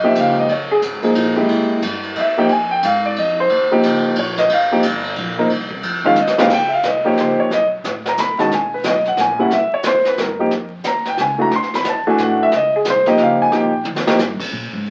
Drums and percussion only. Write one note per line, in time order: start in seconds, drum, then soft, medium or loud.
0.15 kick soft
0.15 hi-hat pedal medium
0.15 ride medium
0.49 kick soft
0.49 ride medium
0.82 kick soft
0.82 hi-hat pedal medium
0.82 ride medium
1.02 ride soft
1.15 kick soft
1.15 ride medium
1.48 kick soft
1.48 ride medium
1.82 kick soft
1.82 hi-hat pedal medium
1.82 ride medium
2.03 ride soft
2.16 kick soft
2.16 ride medium
2.49 kick soft
2.49 ride medium
2.83 kick soft
2.83 hi-hat pedal medium
2.83 ride medium
3.16 kick soft
3.16 ride medium
3.49 kick soft
3.49 ride medium
3.83 kick soft
3.83 hi-hat pedal medium
3.83 ride medium
4.03 ride soft
4.16 kick soft
4.16 ride medium
4.37 snare medium
4.49 kick soft
4.49 ride medium
4.83 kick soft
4.83 hi-hat pedal medium
4.83 ride medium
5.04 ride soft
5.16 kick soft
5.16 ride medium
5.49 kick soft
5.49 ride medium
5.71 kick medium
5.83 kick soft
5.83 ride medium
6.04 kick soft
6.16 hi-hat pedal medium
6.27 snare medium
6.38 snare loud
6.50 brush sweep soft
6.50 kick medium
6.50 snare soft
6.50 crash medium
6.83 kick soft
6.83 snare medium
6.83 hi-hat pedal medium
7.17 kick soft
7.17 snare soft
7.51 brush sweep soft
7.51 kick soft
7.51 snare soft
7.84 kick soft
7.84 snare medium
7.84 hi-hat pedal medium
8.05 snare soft
8.17 kick soft
8.17 snare medium
8.17 hi-hat pedal medium
8.39 snare soft
8.51 brush sweep soft
8.51 kick soft
8.51 snare soft
8.84 kick soft
8.84 snare medium
8.84 hi-hat pedal medium
9.05 snare soft
9.17 kick soft
9.17 snare soft
9.50 brush sweep soft
9.50 kick soft
9.50 snare soft
9.83 kick soft
9.83 snare medium
9.83 hi-hat pedal medium
10.05 snare soft
10.17 kick soft
10.17 snare soft
10.51 brush sweep medium
10.51 kick soft
10.51 snare soft
10.84 kick soft
10.84 snare medium
10.84 hi-hat pedal medium
11.05 snare soft
11.17 kick soft
11.17 snare soft
11.51 brush sweep medium
11.51 kick soft
11.51 snare soft
11.62 snare soft
11.74 snare soft
11.84 kick soft
11.84 snare medium
11.84 hi-hat pedal medium
12.18 kick soft
12.18 snare soft
12.51 brush sweep soft
12.51 kick soft
12.51 snare soft
12.85 kick soft
12.85 snare medium
12.85 hi-hat pedal medium
13.06 snare soft
13.18 kick soft
13.18 snare soft
13.51 brush sweep medium
13.51 kick soft
13.51 snare soft
13.85 mid tom medium
13.96 snare medium
14.07 snare medium
14.18 snare medium
14.18 hi-hat pedal medium
14.40 kick medium
14.40 crash medium
14.85 closed hi-hat soft